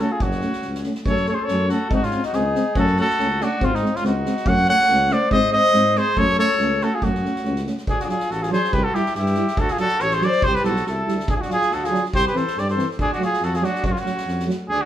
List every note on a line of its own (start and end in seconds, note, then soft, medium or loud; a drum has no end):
0.00 0.08 C#4 medium
0.00 0.13 F#4 medium
0.00 0.13 A4 medium
0.11 0.23 F4 medium
0.11 0.24 G#4 medium
0.20 0.44 F#1 medium
0.20 0.85 C#4 medium
0.20 0.85 F#4 medium
0.20 kick medium
0.31 snare soft
0.41 0.51 A3 soft
0.41 0.51 C#4 medium
0.41 snare soft
0.53 snare soft
0.62 0.86 C#2 medium
0.62 snare soft
0.75 snare soft
0.83 0.93 A3 medium
0.83 0.93 C#4 soft
0.83 snare soft
0.95 snare soft
1.04 1.29 F#2 medium
1.04 1.14 A3 medium
1.04 1.13 C#4 medium
1.04 1.26 A4 medium
1.04 1.26 C#5 medium
1.04 kick medium
1.16 snare soft
1.26 1.35 A3 medium
1.26 1.35 C#4 medium
1.26 1.35 A4 medium
1.26 1.36 C#5 medium
1.26 snare soft
1.34 1.42 G#4 medium
1.34 1.46 C5 medium
1.41 1.68 A4 medium
1.41 1.71 C#5 medium
1.47 1.72 F#2 medium
1.47 1.57 A3 soft
1.47 1.56 C#4 medium
1.47 snare soft
1.68 1.78 A3 medium
1.68 1.78 C#4 medium
1.68 1.89 F#4 medium
1.68 1.90 A4 medium
1.68 snare soft
1.90 2.14 G#2 medium
1.90 1.99 G#3 medium
1.90 2.00 C4 medium
1.90 2.05 D#4 medium
1.90 kick medium
1.94 2.05 F#4 medium
2.03 2.23 C#4 medium
2.03 2.24 F4 medium
2.03 snare soft
2.11 2.21 G#3 medium
2.11 2.22 C4 medium
2.11 snare soft
2.23 2.32 D#4 medium
2.23 2.36 F#4 medium
2.23 snare soft
2.32 2.57 C#2 loud
2.32 2.43 G#3 medium
2.32 2.41 C4 medium
2.32 2.75 D#4 medium
2.32 2.77 G#4 medium
2.32 snare soft
2.55 2.63 G#3 medium
2.55 2.63 C4 medium
2.55 snare soft
2.75 3.00 F#2 loud
2.75 2.85 A3 medium
2.75 2.85 C#4 medium
2.75 2.96 F#4 medium
2.75 2.97 A4 medium
2.75 kick medium
2.86 snare soft
2.97 3.06 A3 medium
2.97 3.07 C#4 medium
2.97 3.44 F#4 medium
2.97 snare soft
3.01 3.45 A4 medium
3.10 snare soft
3.18 3.43 C#2 medium
3.18 3.27 A3 soft
3.18 3.27 C#4 medium
3.18 snare soft
3.40 3.48 A3 medium
3.40 3.48 C#4 medium
3.40 3.64 D4 medium
3.40 3.66 F#4 medium
3.40 snare soft
3.60 3.84 G#2 medium
3.60 3.69 G#3 medium
3.60 3.69 C4 medium
3.60 3.75 C4 medium
3.60 kick medium
3.64 3.76 F4 medium
3.75 3.97 C4 medium
3.75 3.97 D#4 medium
3.75 snare soft
3.81 3.90 G#3 medium
3.81 3.91 C4 medium
3.85 snare soft
3.96 4.05 C#4 medium
3.96 4.05 F4 medium
3.96 snare soft
4.02 4.26 C#2 loud
4.02 4.11 G#3 medium
4.02 4.12 C4 medium
4.02 4.49 F#4 medium
4.02 snare soft
4.07 4.49 D#4 medium
4.25 4.33 G#3 medium
4.25 4.34 C4 medium
4.25 snare soft
4.37 snare soft
4.46 4.69 F#2 medium
4.46 4.55 A3 medium
4.46 4.55 C#4 medium
4.46 4.68 C#5 medium
4.46 4.68 F#5 loud
4.46 kick medium
4.58 snare soft
4.67 4.76 A3 medium
4.67 4.76 C#4 soft
4.67 5.14 C#5 medium
4.67 5.14 F#5 loud
4.67 snare soft
4.78 snare soft
4.88 5.12 C#2 loud
4.88 4.96 A3 medium
4.88 4.97 C#4 medium
4.88 snare soft
5.09 5.18 A3 medium
5.09 5.17 C#4 medium
5.09 5.32 C5 medium
5.09 5.31 D5 medium
5.09 snare soft
5.30 5.54 G#2 medium
5.30 5.39 G#3 medium
5.30 5.40 C4 medium
5.30 5.52 C5 medium
5.30 5.51 D#5 loud
5.30 kick medium
5.44 snare soft
5.51 5.60 G#3 soft
5.51 5.60 C4 medium
5.51 5.99 C5 medium
5.51 5.99 D#5 loud
5.51 snare soft
5.65 snare soft
5.72 5.97 G#2 medium
5.72 5.81 G#3 medium
5.72 5.82 C4 medium
5.72 snare soft
5.95 6.04 G#3 medium
5.95 6.04 C4 medium
5.95 6.19 G#4 medium
5.95 6.20 C5 medium
5.95 snare soft
6.15 6.40 F#2 medium
6.15 6.24 A3 medium
6.15 6.26 C#4 medium
6.15 6.38 A4 medium
6.15 6.39 C#5 loud
6.15 kick medium
6.29 snare soft
6.37 6.46 A3 medium
6.37 6.47 C#4 medium
6.37 6.84 A4 medium
6.37 6.85 C#5 loud
6.37 snare soft
6.50 snare soft
6.59 6.82 C#2 loud
6.59 6.68 A3 medium
6.59 6.69 C#4 medium
6.59 snare soft
6.81 6.89 A3 medium
6.81 6.89 C#4 medium
6.81 6.96 F#4 medium
6.81 6.96 A4 medium
6.81 snare soft
6.94 7.05 F4 medium
6.94 7.05 G#4 medium
7.01 7.25 F#2 medium
7.01 7.10 A3 medium
7.01 7.66 C#4 medium
7.01 7.12 C#4 medium
7.01 7.67 F#4 medium
7.01 kick medium
7.15 snare soft
7.23 7.31 A3 medium
7.23 7.32 C#4 medium
7.23 snare soft
7.36 snare soft
7.43 7.68 C#2 loud
7.43 7.52 A3 soft
7.43 7.54 C#4 medium
7.43 snare soft
7.56 snare soft
7.64 7.73 A3 medium
7.64 7.75 C#4 soft
7.64 snare soft
7.77 snare soft
7.87 7.99 D2 medium
7.87 8.00 D4 medium
7.87 8.02 G#4 medium
7.87 kick medium
8.00 8.04 D4 medium
8.00 8.05 F4 soft
8.00 8.04 F#4 medium
8.00 8.05 G#4 medium
8.00 snare soft
8.04 8.16 F#3 soft
8.04 8.10 D4 medium
8.04 8.16 D4 soft
8.09 8.32 F4 medium
8.09 8.33 G#4 medium
8.09 snare soft
8.20 snare soft
8.30 8.53 A1 medium
8.30 8.43 F#4 medium
8.30 8.44 A4 medium
8.30 snare soft
8.42 8.51 F4 medium
8.42 8.51 G#4 medium
8.42 snare soft
8.50 8.58 F#3 medium
8.50 8.60 D4 medium
8.50 8.75 G#4 medium
8.50 8.75 C5 medium
8.50 snare soft
8.64 snare soft
8.72 8.84 C2 medium
8.72 8.87 G4 medium
8.72 8.85 B4 medium
8.72 kick medium
8.84 8.97 F#4 medium
8.84 8.96 A4 medium
8.93 9.02 G3 medium
8.93 9.02 E4 medium
8.93 9.15 E4 medium
8.93 9.15 G4 medium
8.93 snare soft
9.06 snare soft
9.15 9.38 G2 medium
9.15 9.62 E4 medium
9.15 9.60 G4 medium
9.15 snare soft
9.26 snare soft
9.34 9.44 G3 medium
9.34 9.45 E4 medium
9.34 snare soft
9.47 snare soft
9.57 9.69 D2 medium
9.57 9.74 F#4 medium
9.57 9.72 A4 loud
9.57 kick medium
9.68 9.79 G#4 medium
9.68 snare soft
9.72 9.80 F4 medium
9.77 9.87 F#3 medium
9.77 9.87 D4 medium
9.77 10.03 A4 loud
9.77 snare soft
9.82 10.05 F#4 medium
9.89 snare soft
9.99 10.23 A1 medium
9.99 10.15 C#5 medium
9.99 snare soft
10.04 10.17 A4 medium
10.10 10.25 C5 medium
10.10 snare soft
10.15 10.28 G#4 medium
10.20 10.29 F#3 medium
10.20 10.30 D4 medium
10.20 10.46 D5 medium
10.20 snare soft
10.27 10.49 C5 medium
10.32 snare soft
10.42 10.55 C2 medium
10.42 10.56 C5 loud
10.42 kick medium
10.47 10.57 G4 medium
10.55 10.65 G4 medium
10.55 10.64 B4 medium
10.55 snare soft
10.63 10.83 B1 medium
10.63 10.72 G3 medium
10.63 10.71 E4 medium
10.63 10.84 A4 medium
10.63 snare soft
10.68 10.86 F#4 medium
10.76 snare soft
10.86 11.04 C2 medium
10.86 11.32 E4 medium
10.86 11.31 A4 medium
10.86 snare soft
11.05 11.25 D2 medium
11.05 11.15 G3 medium
11.05 11.14 E4 soft
11.05 snare soft
11.20 snare soft
11.28 11.39 D2 medium
11.28 11.36 D4 medium
11.28 11.35 G#4 loud
11.28 kick medium
11.36 11.43 F4 soft
11.36 11.42 G#4 medium
11.41 11.49 D4 medium
11.41 11.49 F#4 medium
11.41 snare soft
11.47 11.56 F#3 soft
11.47 11.56 D4 medium
11.47 11.75 F4 medium
11.47 snare soft
11.52 11.75 G#4 medium
11.61 snare soft
11.70 11.93 D2 medium
11.70 11.85 F#4 medium
11.70 11.87 A4 medium
11.70 snare soft
11.84 12.04 F4 medium
11.84 12.04 G#4 medium
11.84 snare soft
11.90 11.99 F#3 medium
11.90 11.99 D4 medium
11.94 snare soft
12.05 snare soft
12.13 12.24 C2 medium
12.13 12.24 G4 medium
12.13 12.24 C5 loud
12.13 kick medium
12.27 12.37 G4 medium
12.27 12.39 B4 medium
12.27 snare soft
12.33 12.42 E3 medium
12.33 12.42 C4 medium
12.33 12.60 A4 medium
12.33 snare soft
12.37 12.61 C5 medium
12.47 snare soft
12.56 12.79 G2 medium
12.56 12.68 G4 medium
12.56 12.68 D5 medium
12.56 snare soft
12.68 12.88 A4 medium
12.68 12.88 C5 medium
12.68 snare soft
12.75 12.84 E3 medium
12.75 12.84 C4 medium
12.75 snare soft
12.91 snare soft
12.98 13.09 D2 medium
12.98 13.10 D4 medium
12.98 13.10 G#4 medium
12.98 kick medium
13.12 13.20 D4 medium
13.12 13.20 F#4 medium
13.12 snare soft
13.18 13.26 F#3 medium
13.18 13.27 A3 medium
13.18 snare soft
13.22 13.45 F4 medium
13.22 13.45 G#4 medium
13.33 snare soft
13.41 13.64 F2 medium
13.41 13.56 F#4 medium
13.41 13.57 A4 medium
13.41 snare soft
13.54 13.66 F4 medium
13.54 13.66 G#4 medium
13.54 snare soft
13.60 13.69 F#3 medium
13.60 13.70 A3 medium
13.60 13.84 D4 medium
13.60 13.84 F#4 medium
13.60 snare soft
13.75 snare soft
13.83 13.94 F#2 medium
13.83 13.94 F#4 medium
13.83 kick medium
13.87 13.92 C#4 medium
13.92 14.02 C#4 medium
13.92 14.00 F4 medium
13.96 14.47 F#4 medium
13.96 snare soft
14.02 14.12 F#3 soft
14.02 14.11 A3 soft
14.02 14.48 C#4 medium
14.06 snare soft
14.17 snare soft
14.26 14.49 F2 medium
14.26 snare soft
14.39 snare soft
14.46 14.54 F#3 medium
14.46 14.54 A3 medium
14.50 snare soft
14.68 14.79 D2 medium
14.68 14.81 D4 medium
14.68 14.83 G#4 medium
14.81 14.85 D4 medium
14.81 14.85 F#4 medium